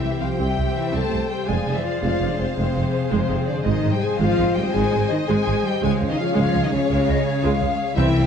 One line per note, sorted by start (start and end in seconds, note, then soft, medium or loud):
0.00 0.10 C2 medium
0.00 0.11 C2 medium
0.00 1.50 C3 medium
0.00 0.21 E3 medium
0.00 0.38 G3 soft
0.00 0.56 C4 medium
0.00 0.10 C4 medium
0.00 0.21 E4 medium
0.00 1.50 E4 soft
0.00 0.75 G4 medium
0.00 1.44 G4 medium
0.00 0.20 C5 medium
0.00 3.62 C5 medium
0.00 0.20 E5 medium
0.00 1.11 E5 medium
0.00 1.44 G5 medium
0.20 0.28 C2 medium
0.20 0.29 C2 medium
0.20 0.40 F3 medium
0.20 0.28 C4 medium
0.20 0.41 F4 medium
0.20 0.93 C5 medium
0.20 0.28 F5 medium
0.39 0.46 C2 medium
0.39 0.47 C2 medium
0.39 1.50 G3 soft
0.39 0.76 G3 medium
0.39 0.55 C4 medium
0.39 0.76 G4 medium
0.39 0.91 E5 medium
0.39 0.75 G5 medium
0.57 0.64 C2 medium
0.57 0.66 C2 medium
0.57 0.64 C4 medium
0.57 1.66 C4 medium
0.76 0.93 E3 medium
0.76 0.94 E4 medium
0.76 1.50 G4 medium
0.76 0.94 E5 medium
0.91 1.01 C2 medium
0.91 1.02 C2 medium
0.91 1.29 A3 medium
0.91 1.08 C4 medium
0.91 1.31 A4 loud
0.91 1.50 C5 medium
0.91 1.30 C5 medium
0.96 1.31 A5 medium
1.09 1.19 C2 medium
1.09 1.20 C2 medium
1.09 1.17 C4 medium
1.09 1.50 E5 medium
1.30 1.48 G3 medium
1.30 1.49 G4 medium
1.30 2.03 C5 medium
1.30 1.48 G5 medium
1.46 1.56 F1 medium
1.46 3.68 F2 medium
1.46 1.64 G#3 medium
1.46 1.76 G#3 medium
1.46 5.80 G#4 medium
1.46 2.57 D5 medium
1.46 3.67 F5 medium
1.46 1.75 G#5 medium
1.50 1.57 F1 medium
1.50 1.76 G#4 loud
1.65 1.74 F1 medium
1.65 1.75 F1 medium
1.65 1.73 G#3 medium
1.65 2.74 C4 medium
1.75 1.85 E3 medium
1.75 1.86 E4 medium
1.75 1.84 E5 medium
1.84 2.00 F3 medium
1.84 2.00 F4 medium
1.84 2.93 G#4 medium
1.84 2.03 F5 medium
2.01 2.10 F1 medium
2.01 2.11 F1 medium
2.01 2.09 F3 medium
2.01 2.18 G#3 medium
2.01 2.29 F4 loud
2.01 2.38 C5 medium
2.01 2.30 F5 medium
2.21 2.28 F1 medium
2.21 2.29 F1 medium
2.21 2.28 G#3 medium
2.21 3.29 F5 medium
2.29 2.38 D3 medium
2.29 2.39 D4 medium
2.29 2.39 D5 medium
2.37 2.46 F1 medium
2.37 2.47 F1 medium
2.37 2.55 C3 medium
2.37 2.46 G#3 medium
2.37 2.56 C4 medium
2.37 3.10 C5 medium
2.37 2.55 C5 medium
2.56 2.65 F1 medium
2.56 3.10 C3 medium
2.56 3.67 C3 medium
2.56 2.73 G#3 medium
2.56 3.10 C4 medium
2.56 3.09 C5 medium
2.56 6.12 C5 medium
2.75 2.83 F1 medium
2.75 2.84 F1 medium
2.75 2.83 G#3 medium
2.75 3.84 C4 medium
2.94 4.01 G#4 medium
3.10 3.19 F1 medium
3.10 3.47 C3 medium
3.10 3.28 G#3 medium
3.10 3.47 C4 loud
3.10 3.47 C5 medium
3.29 3.37 F1 medium
3.29 3.37 G#3 medium
3.29 3.68 F5 medium
3.46 3.66 D3 medium
3.46 3.57 D4 medium
3.46 4.20 C5 medium
3.46 3.65 D5 medium
3.64 3.73 G#1 medium
3.64 3.74 G#1 medium
3.64 5.85 G#2 medium
3.64 3.93 D#3 medium
3.64 3.81 G#3 medium
3.64 3.93 D#4 loud
3.64 3.91 D#5 medium
3.69 5.80 C5 medium
3.69 5.80 D#5 medium
3.83 3.92 G#1 medium
3.83 3.90 G#3 medium
3.83 4.92 C4 medium
3.92 4.02 G3 medium
3.92 4.02 G5 medium
3.96 4.04 G4 medium
4.01 4.20 G#3 medium
4.01 5.09 G#4 medium
4.01 4.21 G#4 medium
4.01 4.21 G#5 medium
4.19 4.27 G#1 medium
4.19 4.28 G#1 loud
4.19 4.56 F3 loud
4.19 4.36 G#3 medium
4.19 4.56 F4 loud
4.19 4.56 C5 medium
4.19 4.56 F5 loud
4.38 4.45 G#1 medium
4.38 4.46 G#1 medium
4.38 4.45 G#3 medium
4.38 5.45 D#5 medium
4.55 4.64 G#1 medium
4.55 4.65 G#1 medium
4.55 4.74 G3 medium
4.55 4.64 G#3 medium
4.55 4.75 G4 loud
4.55 5.28 C5 medium
4.55 4.74 G5 medium
4.73 4.82 G#1 medium
4.73 4.83 G#1 medium
4.73 5.84 D#3 medium
4.73 5.10 G#3 loud
4.73 4.91 G#3 medium
4.73 5.10 G#4 loud
4.73 5.10 G#5 medium
4.92 5.00 G#1 medium
4.92 5.01 G#1 medium
4.92 5.00 G#3 medium
4.92 5.84 C4 medium
5.09 5.18 D#3 medium
5.09 5.29 D#4 loud
5.09 6.19 G#4 medium
5.09 5.28 D#5 medium
5.28 5.36 G#1 loud
5.28 5.37 G#1 loud
5.28 5.44 G#3 loud
5.28 5.64 G#3 loud
5.28 5.64 G#4 loud
5.28 5.64 C5 medium
5.28 5.65 G#5 loud
5.45 5.54 G#1 medium
5.45 5.55 G#1 medium
5.45 5.53 G#3 medium
5.45 5.84 D#5 medium
5.64 5.82 G3 medium
5.64 5.83 G4 loud
5.64 5.84 C5 medium
5.64 5.83 G5 loud
5.81 5.90 C#2 medium
5.81 5.90 C#2 loud
5.81 7.99 C#3 medium
5.81 5.97 G#3 medium
5.81 6.09 G#3 loud
5.81 7.93 G#4 medium
5.81 5.96 G#4 loud
5.81 7.94 C#5 loud
5.81 7.94 F5 medium
5.81 5.92 G#5 loud
5.99 6.07 C#2 medium
5.99 6.08 C#2 medium
5.99 6.06 G#3 medium
5.99 7.07 C#4 medium
6.09 6.18 D#3 medium
6.09 6.15 D#4 loud
6.09 6.18 D#5 medium
6.18 6.35 F3 medium
6.18 6.36 F4 medium
6.18 7.24 G#4 medium
6.18 6.35 F5 medium
6.35 6.43 C#2 loud
6.35 6.44 C#2 loud
6.35 6.63 F3 loud
6.35 6.51 G#3 loud
6.35 6.64 F4 loud
6.35 6.71 C#5 medium
6.35 6.72 C#5 medium
6.35 6.63 F5 loud
6.52 6.61 C#2 medium
6.52 6.62 C#2 medium
6.52 6.60 G#3 medium
6.52 7.60 F5 medium
6.62 6.73 D#3 medium
6.62 6.69 D#4 loud
6.62 6.72 D#5 medium
6.70 6.79 C#2 medium
6.70 6.80 C#2 medium
6.70 6.81 C#3 medium
6.70 6.79 G#3 medium
6.70 6.88 C#4 loud
6.70 6.89 C#5 loud
6.70 7.43 C#5 medium
6.88 6.97 C#2 loud
6.88 6.98 C#2 loud
6.88 7.44 C#3 loud
6.88 7.06 G#3 loud
6.88 8.00 G#3 medium
6.88 7.43 C#4 loud
6.88 7.43 C#5 medium
6.88 7.07 F5 loud
7.07 7.15 C#2 medium
7.07 7.17 C#2 medium
7.07 7.15 G#3 medium
7.07 7.99 C#4 medium
7.07 7.25 D#5 medium
7.25 7.99 G#4 medium
7.25 7.43 C#5 medium
7.43 7.51 C#2 loud
7.43 7.60 G#3 loud
7.43 7.78 C#5 medium
7.43 7.97 F5 loud
7.61 7.69 C#2 medium
7.61 7.69 G#3 medium
7.61 7.99 F5 medium
7.79 7.99 C#5 medium
7.96 8.04 C2 loud
7.96 8.05 C2 loud
7.96 8.27 C3 medium
7.96 8.27 C3 loud
7.96 8.23 E3 loud
7.96 8.14 C4 medium
7.96 8.22 E4 loud
7.96 8.27 E4 medium
7.96 8.27 E5 loud
7.96 8.22 E5 loud
7.96 8.27 G5 loud
8.15 8.22 C2 medium
8.15 8.23 C2 medium
8.15 8.23 C4 medium
8.15 8.27 E4 medium
8.23 8.27 F5 medium